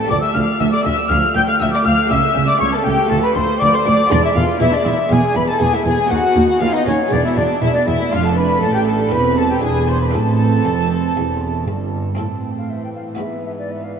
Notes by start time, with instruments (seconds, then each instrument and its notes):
Already playing: violin section A4
0.04 harpsichord A3 D4 A4
0.09 harpsichord D2, cello section D2, double bass section D2, viola section F3, violin section D5 D6, flute D6
0.21 viola section A3, violin section E5 E6, flute E6
0.34 double bass section D2, harpsichord D2, cello section D2, viola section F3, violin section F5 F6, flute F6
0.48 viola section A3
0.59 cello section D2, double bass section D2, harpsichord D2, viola section F3, violin section E5 E6, flute E6
0.72 viola section A3, violin section D5 D6, flute D6
0.84 harpsichord D2, cello section D2, double bass section D2, viola section F3, violin section E5 E6, flute E6
0.99 viola section A3
1.09 double bass section D2, harpsichord D2, cello section D2, viola section F3, violin section F5 F6, flute F6
1.24 viola section A3
1.35 harpsichord D2, double bass section D2, cello section D2, viola section F3, violin section G5 G6, flute G6
1.47 viola section A3, violin section F5 F6, flute F6
1.59 harpsichord D2, double bass section D2, cello section D2, viola section F3, violin section E5 E6, flute E6
1.73 viola section A3, violin section D5 D6, flute D6
1.85 harpsichord D2, double bass section D2, cello section D2, viola section F3, violin section F5 F6, flute F6
1.99 viola section A3
2.06 harpsichord A3 E4 A4
2.10 harpsichord C#2, double bass section C#2, cello section C#2, viola section C#4, violin section E5 E6, flute E6
2.23 viola section A3
2.35 harpsichord C#2, double bass section C#2, cello section C#2, viola section C#4
2.46 viola section A3, violin section D5 D6, flute D6
2.59 harpsichord C#2, double bass section C#2, cello section C#2, viola section C#4, violin section C#5 C#6, flute C#6
2.72 viola section A3, violin section A4 A5, flute A5
2.84 harpsichord C#2, double bass section C#2, cello section C#2, viola section C#4, violin section G4 G5, flute G5
2.98 viola section A3
3.05 harpsichord A3 F4 A4, flute A5, violin section A5
3.10 harpsichord D2, double bass section D2, cello section D2, viola section F3, violin section A4
3.22 viola section A3, violin section B4 B5, flute B5
3.35 harpsichord D2, double bass section D2, cello section D2, viola section F3, violin section C5 C6, flute C6
3.49 viola section A3
3.60 double bass section D2, cello section D2, harpsichord D2, viola section F3, violin section D5 D6, flute D6
3.73 viola section A3, violin section C5 C6, flute C6
3.85 harpsichord D2, cello section D2, double bass section D2, viola section F3, violin section D5 D6, flute D6
3.98 viola section A3
4.06 harpsichord B3 E4 G#4
4.10 double bass section E1, cello section E2, harpsichord E2, viola section B3, violin section D4 D5, flute D5
4.22 viola section G#3, violin section E4 E5, flute E5
4.34 double bass section E1, harpsichord E2, cello section E2, viola section B3, violin section F4 F5, flute F5
4.48 viola section G#3
4.58 double bass section E1, harpsichord E2, cello section E2, viola section B3, violin section E4 E5, flute E5
4.72 viola section G#3, violin section D4 D5, flute D5
4.85 double bass section E1, harpsichord E2, cello section E2, viola section B3, violin section E4 E5, flute E5
4.97 viola section G#3
5.09 double bass section E1, harpsichord E2, cello section E2, viola section B3, violin section G#4 G#5, flute G#5
5.23 viola section G#3
5.35 double bass section E1, harpsichord E2, cello section E2, viola section B3, violin section B4 B5, flute B5
5.47 viola section G#3, violin section A4 A5, flute A5
5.60 double bass section E1, harpsichord E2, cello section E2, viola section B3, violin section G#4 G#5, flute G#5
5.72 viola section G#3, violin section E4 E5, flute E5
5.84 double bass section E1, cello section E2, harpsichord E2, viola section B3, violin section G#4 G#5, flute G#5
5.97 viola section G#3
6.06 harpsichord B3 F#4
6.10 double bass section D#2, harpsichord D#2, cello section D#2, viola section D#4, violin section F#4 F#5, flute F#5
6.24 viola section B3
6.35 double bass section D#2, cello section D#2, harpsichord D#2, viola section D#4
6.49 viola section B3, violin section F#4 F#5, flute F#5
6.60 double bass section D#2, harpsichord D#2, cello section D#2, viola section D#4, violin section F4 F5, flute F5
6.73 viola section B3, violin section D#4 D#5, flute D#5
6.85 double bass section D#2, harpsichord D#2, cello section D#2, violin section C#4 C#5, viola section D#4, flute C#5
7.00 viola section B3
7.06 harpsichord B3 G#4
7.11 double bass section E1, harpsichord E2, cello section E2, viola section G#3, violin section D4 D5, flute D5
7.24 viola section B3, violin section E4 E5, flute E5
7.36 double bass section E1, harpsichord E2, cello section E2, viola section G#3, violin section D4 D5, flute D5
7.50 viola section B3
7.61 double bass section E1, harpsichord E2, cello section E2, viola section G#3, violin section E4 E5, flute E5
7.73 viola section B3, violin section D4 D5, flute D5
7.87 double bass section E1, cello section E2, harpsichord E2, viola section G#3, violin section E4 E5, flute E5
8.01 viola section B3
8.08 cello section F2, harpsichord A3 D4 A4, viola section D4, violin section F4, flute F5
8.12 double bass section F1, harpsichord F2, violin section F5
8.24 violin section A4 A5, flute A5
8.37 violin section B4 B5, flute B5
8.61 double bass section A1, harpsichord A2, cello section A2, viola section D4, violin section A4 A5, flute A5
8.74 violin section G4 G5, flute G5
8.85 violin section A4 A5, flute A5
9.07 harpsichord C4 E4 A4
9.11 double bass section E1, harpsichord E2, cello section E2, viola section C4, violin section B4 B5, flute B5
9.38 violin section A4 A5, flute A5
9.50 violin section G4 G5, flute G5
9.59 harpsichord D4 E4 B4, violin section G#4, flute G#5
9.63 double bass section E1, harpsichord E2, cello section E2, viola section D4, violin section G#5
9.88 violin section C5 C6, flute C6
10.01 violin section B4 B5, flute B5
10.11 double bass section A1, harpsichord C4 E4 A4, viola section C4, violin section A4 A5, flute A5
10.15 cello section A2, harpsichord A2
10.65 double bass section F1, harpsichord F2, cello section F2
11.17 double bass section E1, cello section E2, harpsichord E2
11.67 double bass section G1, cello section G2, harpsichord G2
12.15 harpsichord C4 E4 A4, violin section C4, flute A5
12.19 cello section A2, harpsichord A2, viola section E3, violin section A4
12.58 flute F5
12.70 flute E5
12.85 flute G5
12.96 flute F5
13.15 harpsichord B3 E4 B4
13.19 harpsichord G#2, cello section G#2, violin section B3 B4, flute E5
13.46 flute E5
13.59 flute D5
13.71 flute E5
13.84 flute F5
13.95 flute E5